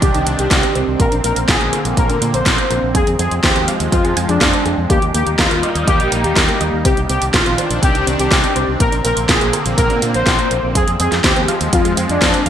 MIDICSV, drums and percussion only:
0, 0, Header, 1, 2, 480
1, 0, Start_track
1, 0, Tempo, 487805
1, 981, Time_signature, 4, 2, 24, 8
1, 12292, End_track
2, 0, Start_track
2, 0, Title_t, "Drums"
2, 21, Note_on_c, 9, 36, 124
2, 22, Note_on_c, 9, 42, 91
2, 119, Note_off_c, 9, 36, 0
2, 120, Note_off_c, 9, 42, 0
2, 142, Note_on_c, 9, 42, 39
2, 241, Note_off_c, 9, 42, 0
2, 262, Note_on_c, 9, 42, 65
2, 360, Note_off_c, 9, 42, 0
2, 382, Note_on_c, 9, 42, 36
2, 480, Note_off_c, 9, 42, 0
2, 501, Note_on_c, 9, 36, 115
2, 503, Note_on_c, 9, 38, 118
2, 503, Note_on_c, 9, 42, 91
2, 599, Note_off_c, 9, 36, 0
2, 601, Note_off_c, 9, 38, 0
2, 601, Note_off_c, 9, 42, 0
2, 623, Note_on_c, 9, 42, 39
2, 721, Note_off_c, 9, 42, 0
2, 742, Note_on_c, 9, 42, 39
2, 841, Note_off_c, 9, 42, 0
2, 981, Note_on_c, 9, 36, 115
2, 982, Note_on_c, 9, 42, 88
2, 1079, Note_off_c, 9, 36, 0
2, 1080, Note_off_c, 9, 42, 0
2, 1102, Note_on_c, 9, 42, 37
2, 1200, Note_off_c, 9, 42, 0
2, 1221, Note_on_c, 9, 42, 63
2, 1320, Note_off_c, 9, 42, 0
2, 1342, Note_on_c, 9, 42, 37
2, 1440, Note_off_c, 9, 42, 0
2, 1461, Note_on_c, 9, 36, 123
2, 1463, Note_on_c, 9, 38, 121
2, 1463, Note_on_c, 9, 42, 91
2, 1559, Note_off_c, 9, 36, 0
2, 1561, Note_off_c, 9, 38, 0
2, 1561, Note_off_c, 9, 42, 0
2, 1582, Note_on_c, 9, 42, 37
2, 1681, Note_off_c, 9, 42, 0
2, 1701, Note_on_c, 9, 42, 62
2, 1800, Note_off_c, 9, 42, 0
2, 1822, Note_on_c, 9, 42, 38
2, 1920, Note_off_c, 9, 42, 0
2, 1941, Note_on_c, 9, 36, 127
2, 1941, Note_on_c, 9, 42, 88
2, 2039, Note_off_c, 9, 36, 0
2, 2040, Note_off_c, 9, 42, 0
2, 2062, Note_on_c, 9, 42, 39
2, 2161, Note_off_c, 9, 42, 0
2, 2183, Note_on_c, 9, 42, 62
2, 2281, Note_off_c, 9, 42, 0
2, 2302, Note_on_c, 9, 42, 37
2, 2401, Note_off_c, 9, 42, 0
2, 2420, Note_on_c, 9, 36, 121
2, 2422, Note_on_c, 9, 38, 127
2, 2422, Note_on_c, 9, 42, 90
2, 2519, Note_off_c, 9, 36, 0
2, 2521, Note_off_c, 9, 38, 0
2, 2521, Note_off_c, 9, 42, 0
2, 2542, Note_on_c, 9, 42, 39
2, 2641, Note_off_c, 9, 42, 0
2, 2662, Note_on_c, 9, 42, 36
2, 2760, Note_off_c, 9, 42, 0
2, 2901, Note_on_c, 9, 36, 117
2, 2901, Note_on_c, 9, 42, 87
2, 2999, Note_off_c, 9, 36, 0
2, 3000, Note_off_c, 9, 42, 0
2, 3022, Note_on_c, 9, 42, 37
2, 3120, Note_off_c, 9, 42, 0
2, 3142, Note_on_c, 9, 42, 62
2, 3240, Note_off_c, 9, 42, 0
2, 3262, Note_on_c, 9, 42, 38
2, 3360, Note_off_c, 9, 42, 0
2, 3381, Note_on_c, 9, 36, 124
2, 3382, Note_on_c, 9, 38, 115
2, 3382, Note_on_c, 9, 42, 85
2, 3479, Note_off_c, 9, 36, 0
2, 3480, Note_off_c, 9, 38, 0
2, 3480, Note_off_c, 9, 42, 0
2, 3501, Note_on_c, 9, 42, 34
2, 3599, Note_off_c, 9, 42, 0
2, 3621, Note_on_c, 9, 42, 61
2, 3719, Note_off_c, 9, 42, 0
2, 3741, Note_on_c, 9, 42, 37
2, 3839, Note_off_c, 9, 42, 0
2, 3861, Note_on_c, 9, 36, 119
2, 3862, Note_on_c, 9, 42, 86
2, 3959, Note_off_c, 9, 36, 0
2, 3960, Note_off_c, 9, 42, 0
2, 3982, Note_on_c, 9, 42, 38
2, 4081, Note_off_c, 9, 42, 0
2, 4101, Note_on_c, 9, 42, 61
2, 4200, Note_off_c, 9, 42, 0
2, 4222, Note_on_c, 9, 42, 36
2, 4320, Note_off_c, 9, 42, 0
2, 4341, Note_on_c, 9, 36, 116
2, 4342, Note_on_c, 9, 38, 124
2, 4342, Note_on_c, 9, 42, 85
2, 4439, Note_off_c, 9, 36, 0
2, 4440, Note_off_c, 9, 38, 0
2, 4440, Note_off_c, 9, 42, 0
2, 4462, Note_on_c, 9, 42, 36
2, 4561, Note_off_c, 9, 42, 0
2, 4582, Note_on_c, 9, 42, 36
2, 4680, Note_off_c, 9, 42, 0
2, 4821, Note_on_c, 9, 36, 118
2, 4822, Note_on_c, 9, 42, 87
2, 4919, Note_off_c, 9, 36, 0
2, 4921, Note_off_c, 9, 42, 0
2, 4942, Note_on_c, 9, 42, 36
2, 5041, Note_off_c, 9, 42, 0
2, 5063, Note_on_c, 9, 42, 62
2, 5161, Note_off_c, 9, 42, 0
2, 5182, Note_on_c, 9, 42, 36
2, 5280, Note_off_c, 9, 42, 0
2, 5301, Note_on_c, 9, 36, 113
2, 5302, Note_on_c, 9, 38, 119
2, 5302, Note_on_c, 9, 42, 86
2, 5400, Note_off_c, 9, 36, 0
2, 5400, Note_off_c, 9, 38, 0
2, 5400, Note_off_c, 9, 42, 0
2, 5422, Note_on_c, 9, 42, 37
2, 5521, Note_off_c, 9, 42, 0
2, 5543, Note_on_c, 9, 42, 59
2, 5641, Note_off_c, 9, 42, 0
2, 5663, Note_on_c, 9, 42, 36
2, 5761, Note_off_c, 9, 42, 0
2, 5781, Note_on_c, 9, 36, 122
2, 5782, Note_on_c, 9, 42, 88
2, 5879, Note_off_c, 9, 36, 0
2, 5880, Note_off_c, 9, 42, 0
2, 5903, Note_on_c, 9, 42, 37
2, 6001, Note_off_c, 9, 42, 0
2, 6022, Note_on_c, 9, 42, 62
2, 6121, Note_off_c, 9, 42, 0
2, 6143, Note_on_c, 9, 42, 36
2, 6242, Note_off_c, 9, 42, 0
2, 6261, Note_on_c, 9, 36, 113
2, 6263, Note_on_c, 9, 38, 119
2, 6263, Note_on_c, 9, 42, 90
2, 6359, Note_off_c, 9, 36, 0
2, 6361, Note_off_c, 9, 38, 0
2, 6361, Note_off_c, 9, 42, 0
2, 6382, Note_on_c, 9, 42, 38
2, 6480, Note_off_c, 9, 42, 0
2, 6501, Note_on_c, 9, 42, 36
2, 6600, Note_off_c, 9, 42, 0
2, 6741, Note_on_c, 9, 36, 109
2, 6741, Note_on_c, 9, 42, 95
2, 6839, Note_off_c, 9, 36, 0
2, 6839, Note_off_c, 9, 42, 0
2, 6861, Note_on_c, 9, 42, 37
2, 6959, Note_off_c, 9, 42, 0
2, 6982, Note_on_c, 9, 42, 64
2, 7080, Note_off_c, 9, 42, 0
2, 7101, Note_on_c, 9, 42, 39
2, 7200, Note_off_c, 9, 42, 0
2, 7221, Note_on_c, 9, 36, 114
2, 7221, Note_on_c, 9, 38, 112
2, 7221, Note_on_c, 9, 42, 89
2, 7319, Note_off_c, 9, 36, 0
2, 7320, Note_off_c, 9, 38, 0
2, 7320, Note_off_c, 9, 42, 0
2, 7342, Note_on_c, 9, 42, 36
2, 7440, Note_off_c, 9, 42, 0
2, 7462, Note_on_c, 9, 42, 63
2, 7560, Note_off_c, 9, 42, 0
2, 7582, Note_on_c, 9, 42, 39
2, 7680, Note_off_c, 9, 42, 0
2, 7701, Note_on_c, 9, 36, 117
2, 7702, Note_on_c, 9, 42, 93
2, 7799, Note_off_c, 9, 36, 0
2, 7801, Note_off_c, 9, 42, 0
2, 7823, Note_on_c, 9, 42, 39
2, 7922, Note_off_c, 9, 42, 0
2, 7944, Note_on_c, 9, 42, 62
2, 8042, Note_off_c, 9, 42, 0
2, 8063, Note_on_c, 9, 42, 37
2, 8162, Note_off_c, 9, 42, 0
2, 8181, Note_on_c, 9, 36, 115
2, 8182, Note_on_c, 9, 38, 115
2, 8182, Note_on_c, 9, 42, 89
2, 8279, Note_off_c, 9, 36, 0
2, 8281, Note_off_c, 9, 38, 0
2, 8281, Note_off_c, 9, 42, 0
2, 8303, Note_on_c, 9, 42, 39
2, 8401, Note_off_c, 9, 42, 0
2, 8422, Note_on_c, 9, 42, 40
2, 8520, Note_off_c, 9, 42, 0
2, 8661, Note_on_c, 9, 36, 112
2, 8661, Note_on_c, 9, 42, 95
2, 8759, Note_off_c, 9, 36, 0
2, 8760, Note_off_c, 9, 42, 0
2, 8781, Note_on_c, 9, 42, 39
2, 8880, Note_off_c, 9, 42, 0
2, 8902, Note_on_c, 9, 42, 66
2, 9000, Note_off_c, 9, 42, 0
2, 9021, Note_on_c, 9, 42, 40
2, 9120, Note_off_c, 9, 42, 0
2, 9141, Note_on_c, 9, 36, 115
2, 9141, Note_on_c, 9, 38, 109
2, 9141, Note_on_c, 9, 42, 94
2, 9239, Note_off_c, 9, 36, 0
2, 9239, Note_off_c, 9, 38, 0
2, 9239, Note_off_c, 9, 42, 0
2, 9262, Note_on_c, 9, 42, 38
2, 9360, Note_off_c, 9, 42, 0
2, 9381, Note_on_c, 9, 42, 67
2, 9480, Note_off_c, 9, 42, 0
2, 9502, Note_on_c, 9, 42, 42
2, 9600, Note_off_c, 9, 42, 0
2, 9621, Note_on_c, 9, 36, 113
2, 9622, Note_on_c, 9, 42, 96
2, 9719, Note_off_c, 9, 36, 0
2, 9721, Note_off_c, 9, 42, 0
2, 9742, Note_on_c, 9, 42, 43
2, 9841, Note_off_c, 9, 42, 0
2, 9862, Note_on_c, 9, 42, 66
2, 9961, Note_off_c, 9, 42, 0
2, 9982, Note_on_c, 9, 42, 38
2, 10081, Note_off_c, 9, 42, 0
2, 10101, Note_on_c, 9, 36, 109
2, 10102, Note_on_c, 9, 38, 110
2, 10102, Note_on_c, 9, 42, 97
2, 10200, Note_off_c, 9, 36, 0
2, 10200, Note_off_c, 9, 38, 0
2, 10200, Note_off_c, 9, 42, 0
2, 10221, Note_on_c, 9, 42, 41
2, 10320, Note_off_c, 9, 42, 0
2, 10342, Note_on_c, 9, 42, 39
2, 10440, Note_off_c, 9, 42, 0
2, 10581, Note_on_c, 9, 36, 107
2, 10581, Note_on_c, 9, 42, 97
2, 10680, Note_off_c, 9, 36, 0
2, 10680, Note_off_c, 9, 42, 0
2, 10701, Note_on_c, 9, 42, 41
2, 10800, Note_off_c, 9, 42, 0
2, 10821, Note_on_c, 9, 42, 68
2, 10919, Note_off_c, 9, 42, 0
2, 10941, Note_on_c, 9, 38, 34
2, 10941, Note_on_c, 9, 42, 41
2, 11039, Note_off_c, 9, 38, 0
2, 11039, Note_off_c, 9, 42, 0
2, 11061, Note_on_c, 9, 36, 115
2, 11061, Note_on_c, 9, 38, 108
2, 11061, Note_on_c, 9, 42, 96
2, 11159, Note_off_c, 9, 36, 0
2, 11159, Note_off_c, 9, 38, 0
2, 11159, Note_off_c, 9, 42, 0
2, 11181, Note_on_c, 9, 42, 39
2, 11280, Note_off_c, 9, 42, 0
2, 11301, Note_on_c, 9, 42, 68
2, 11399, Note_off_c, 9, 42, 0
2, 11422, Note_on_c, 9, 42, 40
2, 11520, Note_off_c, 9, 42, 0
2, 11540, Note_on_c, 9, 42, 97
2, 11541, Note_on_c, 9, 36, 116
2, 11639, Note_off_c, 9, 36, 0
2, 11639, Note_off_c, 9, 42, 0
2, 11661, Note_on_c, 9, 42, 41
2, 11760, Note_off_c, 9, 42, 0
2, 11781, Note_on_c, 9, 42, 66
2, 11880, Note_off_c, 9, 42, 0
2, 11901, Note_on_c, 9, 42, 40
2, 12000, Note_off_c, 9, 42, 0
2, 12021, Note_on_c, 9, 36, 112
2, 12022, Note_on_c, 9, 38, 121
2, 12022, Note_on_c, 9, 42, 102
2, 12119, Note_off_c, 9, 36, 0
2, 12120, Note_off_c, 9, 38, 0
2, 12120, Note_off_c, 9, 42, 0
2, 12141, Note_on_c, 9, 42, 42
2, 12240, Note_off_c, 9, 42, 0
2, 12261, Note_on_c, 9, 42, 40
2, 12292, Note_off_c, 9, 42, 0
2, 12292, End_track
0, 0, End_of_file